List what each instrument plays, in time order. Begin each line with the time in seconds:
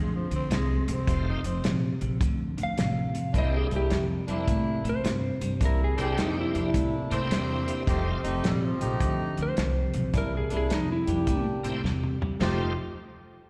Already playing: upright bass D2, clean electric guitar F2 D3, tenor saxophone G#3
0.15 tenor saxophone F3
0.31 upright bass D2, clean electric guitar F2 D3, closed hi-hat
0.36 tenor saxophone C4
0.50 upright bass C2, clean electric guitar F2 C3, tenor saxophone G#3, snare, closed hi-hat
0.88 upright bass C2, clean electric guitar F2 C3, closed hi-hat
0.93 tenor saxophone C4
1.07 upright bass F1, clean electric guitar F2 C3, tonewheel organ A3 C4 D#4 F4 G4, kick, closed hi-hat
1.29 tenor saxophone D#4
1.44 upright bass F1, clean electric guitar F2 C3, tenor saxophone C4, closed hi-hat
1.64 upright bass A#1, clean electric guitar F2 C3, snare, closed hi-hat
2.01 upright bass A#1, clean electric guitar F2 C3, closed hi-hat
2.21 upright bass D2, clean electric guitar F2 D3, kick, closed hi-hat
2.58 upright bass D2, clean electric guitar F2 D3, closed hi-hat
2.63 electric slide guitar F5
2.77 upright bass A1, clean electric guitar F2 C3, snare, closed hi-hat
3.14 clean electric guitar F2 C3, closed hi-hat
3.33 upright bass C2, clean electric guitar C3 G3, horn section A#3 D4 E4, tonewheel organ A#3 C4 D4 E4 G4, kick, closed hi-hat
3.38 electric slide guitar D#5
3.57 electric slide guitar G#4
3.70 upright bass C2, clean electric guitar C3 G3, horn section A#3 D4 E4, closed hi-hat
3.76 electric slide guitar G4
3.90 upright bass F2, clean electric guitar C3 G3, snare, closed hi-hat
4.27 upright bass F2, clean electric guitar C3 G3, horn section A#3 D4 E4, tonewheel organ A#3 C4 D4 E4 G4, closed hi-hat
4.47 upright bass A2, clean electric guitar C3 A3, kick, closed hi-hat
4.84 upright bass A2, clean electric guitar C3 A3, closed hi-hat
4.89 electric slide guitar C5
5.04 upright bass G2, clean electric guitar C3 G3, snare, closed hi-hat
5.41 upright bass G2, clean electric guitar C3 G3, closed hi-hat
5.60 upright bass C2, clean electric guitar C3 G3, horn section A#3 D4 E4, kick, closed hi-hat
5.65 electric slide guitar A#4
5.84 electric slide guitar G#4
5.97 upright bass C2, clean electric guitar C3 G3, horn section A#3 D4 G4, tonewheel organ A#3 C4 D4 E4 G4, closed hi-hat
6.04 electric slide guitar G#4
6.17 upright bass F2, clean electric guitar C3 G3, snare, closed hi-hat
6.21 electric slide guitar D#4
6.41 electric slide guitar E4
6.54 upright bass F2, clean electric guitar C3 G3, horn section A#3 D4 E4, closed hi-hat
6.74 upright bass A2, clean electric guitar C3 A3, kick, closed hi-hat
7.10 upright bass A2, clean electric guitar C3 A3, tonewheel organ A#3 C4 D4 E4 G4, tenor saxophone C4, closed hi-hat
7.30 upright bass E2, clean electric guitar C3 G3, snare, closed hi-hat
7.68 clean electric guitar C3 G3, closed hi-hat
7.86 upright bass F1, clean electric guitar F2 C3, horn section A3 D#4 G4, tonewheel organ A3 C4 D#4 F4 G4, tenor saxophone C4, kick, closed hi-hat
8.23 upright bass F1, clean electric guitar F2 C3, horn section A3 D#4 G4, closed hi-hat
8.43 upright bass A#1, clean electric guitar F2 C3, tenor saxophone G3, snare, closed hi-hat
8.64 tenor saxophone F3
8.80 upright bass A#1, clean electric guitar F2 C3, horn section A3 D#4 G4, closed hi-hat
9.00 upright bass D2, clean electric guitar F2 D3, kick, closed hi-hat
9.37 upright bass D2, clean electric guitar F2 D3, closed hi-hat
9.43 electric slide guitar C5
9.57 upright bass C2, clean electric guitar F2 C3, snare, closed hi-hat
9.94 upright bass B1, clean electric guitar F2 C3, closed hi-hat
10.13 upright bass C2, clean electric guitar C3 G3, horn section A#3 D4 E4, kick, closed hi-hat
10.18 electric slide guitar A#4
10.37 electric slide guitar G#4
10.50 upright bass C2, clean electric guitar C3 G3, horn section A#3 D4 E4, closed hi-hat
10.57 electric slide guitar G#4
10.70 upright bass F2, clean electric guitar C3 G3, electric slide guitar D#4, snare, closed hi-hat
10.92 electric slide guitar E4
11.07 upright bass F2, clean electric guitar C3 G3, horn section A#3 D4 G4, closed hi-hat
11.27 upright bass A2, clean electric guitar C3 A3, kick, closed hi-hat
11.63 upright bass A2, clean electric guitar C3 A3, tonewheel organ A#3 C4 D4 E4 G4, closed hi-hat
11.84 upright bass E2, clean electric guitar C3 G3, snare
12.03 mid tom
12.21 clean electric guitar C3 G3, floor tom
12.40 upright bass F1, clean electric guitar F3 A3 D#4 G4, tenor saxophone F3, tonewheel organ A3 C4 D#4 F4 G4, horn section A3 D#4 G4, electric slide guitar F4, snare, floor tom, splash